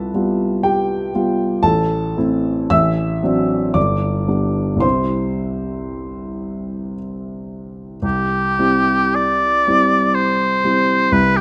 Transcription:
Already playing: C2 G3 B3 F4 A4 B4 A5 B5
0.14 G3 B3 F4
0.63 G4 G5
1.14 G3 B3 F4
1.63 A1 A4 A5
2.17 A3 C4 E4
2.70 A1 E5 E6
3.23 F#3 C4 D4
3.74 G1 D5 D6
4.28 G3 B3 D4
4.77 C2 G3 C4 E4 C6
4.82 C5
8.02 C2 G4
8.59 G3 C4 E4
9.15 D5
9.67 G3 C4 E4
10.15 C5
10.64 G3 C4 E4
11.12 C2 B4
11.37 G4

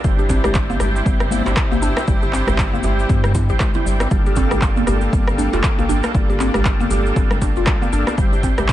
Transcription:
Already playing: D4
0.04 G1 C3 G3 C4 E4 G4 C5, kick, djembe tone, maracas
0.19 G4, muted conga, maracas
0.29 C4, kick, djembe slap, maracas
0.44 G1 G4, cross-stick, low conga, djembe bass, maracas
0.55 kick, clap, muted conga, maracas
0.70 A#3, high conga, maracas
0.80 G1 G4, cross-stick, muted conga, high conga, djembe tone, low conga, maracas
0.96 maracas
1.05 G1 G3, kick, muted conga, high conga, maracas
1.20 cross-stick, high conga, maracas
1.30 A#3, high conga, low conga, maracas
1.46 G1 G3 C4 E4 G4 C5, muted conga, djembe slap, djembe tone, maracas
1.57 kick, cross-stick, clap, maracas
1.71 A#3, muted conga, djembe bass, maracas
1.82 G1 D4, high conga, djembe tone, maracas
1.97 cross-stick, djembe slap, muted conga, maracas
2.08 G1 G3 C4 E4 G4 C5, kick, djembe tone, maracas
2.22 G4, muted conga, maracas
2.33 C4, clap, djembe slap, maracas
2.47 G1 G4, cross-stick, low conga, djembe bass, maracas
2.58 kick, clap, maracas
2.73 A#3, high conga, maracas
2.83 G1 G4, muted conga, djembe tone, high conga, low conga, maracas
2.99 maracas
3.09 G2 G3, kick, muted conga, djembe slap, high conga, maracas
3.24 cross-stick, low conga, maracas
3.34 E4, kick, djembe slap, high conga, djembe tone, maracas
3.49 G1 G3 C4 E4 G4 C5, muted conga, maracas
3.60 kick, cross-stick, clap, djembe tone, low conga, maracas
3.74 G3 C4 E4 G4 C5, muted conga, high conga, maracas
3.86 G1 G3, maracas
4.00 cross-stick, muted conga, djembe slap, high conga, maracas
4.11 G1 G3 A#3 D4 F4 G4 A4, kick, djembe tone, maracas
4.26 G4, muted conga, maracas
4.36 C4, kick, djembe slap, maracas
4.51 G1 G4, cross-stick, djembe bass, low conga, maracas
4.61 kick, clap, maracas
4.76 A#3, high conga, maracas
4.87 G1 G4, cross-stick, muted conga, djembe tone, high conga, low conga, maracas
5.01 maracas
5.12 G1 G3, kick, muted conga, high conga, maracas
5.27 cross-stick, high conga, maracas
5.38 D4, high conga, low conga, maracas
5.53 F1 A#3 D4 F4 G4 A4, djembe slap, muted conga, djembe tone, maracas
5.63 kick, cross-stick, clap, maracas
5.79 A#3, muted conga, djembe bass, maracas
5.89 G1 D4, djembe tone, high conga, maracas
6.04 cross-stick, muted conga, djembe slap, maracas
6.14 G1 G3 A#3 D4 F4 G4 A4, kick, djembe tone, maracas
6.30 G4, muted conga, maracas
6.40 C4, clap, djembe slap, maracas
6.54 G1 G4, cross-stick, djembe bass, low conga, maracas
6.65 kick, clap, maracas
6.80 A#3, high conga, maracas
6.90 G1 G4, muted conga, djembe tone, high conga, low conga, maracas
7.06 maracas
7.15 G1 G3, kick, muted conga, djembe slap, high conga, maracas
7.31 cross-stick, low conga, maracas
7.42 A#3 D4 F4 G4 A4, kick, djembe slap, high conga, maracas
7.56 F1 F4, muted conga, maracas
7.66 kick, cross-stick, clap, djembe tone, low conga, maracas
7.82 A#3, muted conga, high conga, maracas
7.92 G1 D4, maracas
8.07 cross-stick, muted conga, djembe slap, high conga, maracas
8.17 G1 C3 G3 C4 E4 G4 C5, kick, djembe tone, maracas
8.33 G4, muted conga, maracas
8.43 C4, kick, djembe slap, maracas
8.58 G1 G4, cross-stick, djembe bass, low conga, maracas
8.68 kick, clap, maracas

